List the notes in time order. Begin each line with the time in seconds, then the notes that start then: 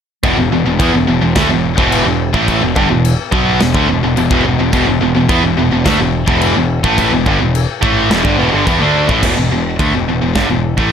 0.24 E1 E2 B2, kick, china
0.37 E1 E2 B2
0.51 E1 E2 B2
0.65 E1 E2 B2
0.79 E2 E3 B3, kick, china
0.94 E1 E2 B2
1.07 E1 E2 B2
1.21 E1 E2 B2
1.35 D2 D3 A3, kick, snare, china
1.49 E1 E2 B2
1.77 E1 E2 B2 E3, kick
1.92 china
2.06 E1 E2 B2
2.33 A1 A2 E3 A3, kick
2.48 kick, china
2.61 E1 E2 B2
2.75 G1 G2 D3, kick
2.89 E1 E2 B2
3.05 china
3.32 B1 B2 F#3 B3, kick
3.60 E1 E2 B2, snare, china
3.74 D2 D3 A3, kick
3.88 E1 E2 B2
4.03 E1 E2 B2
4.16 E1 E2 B2, china
4.30 E1 E2 B2, kick
4.45 E1 E2 B2
4.59 E1 E2 B2
4.73 E1 E2 B2, kick, china
4.86 E1 E2 B2
5.01 E1 E2 B2
5.15 E1 E2 B2
5.29 E2 E3 B3, kick, china
5.44 E1 E2 B2
5.57 E1 E2 B2
5.71 E1 E2 B2
5.84 D2 D3 A3, kick, snare, china
5.99 E1 E2 B2
6.26 E1 E2 B2 E3, kick
6.41 china
6.56 E1 E2 B2
6.84 A1 A2 E3 A3, kick
6.98 kick, china
7.12 E1 E2 B2
7.26 G1 G2 D3, kick
7.40 E1 E2 B2
7.55 china
7.83 A1 A2 E3 A3, kick
8.10 E1 E2 B2, snare, china
8.25 G1 G2 D3, kick
8.39 E1 E2 B2
8.53 G1 G2 D3
8.67 E2 E3 B3, kick, china
8.81 D2 D3 A3 D4
9.09 A1 A2 E3, kick
9.23 E1 E2 B2, kick, crash, china
9.37 E1 E2 B2
9.51 E1 E2 B2
9.79 D2 D3 A3, kick, china
9.93 E1 E2 B2
10.08 E1 E2 B2
10.22 E1 E2 B2
10.35 G1 G2 D3, kick, snare, china
10.49 E1 E2 B2
10.77 A1 A2 E3 A3, kick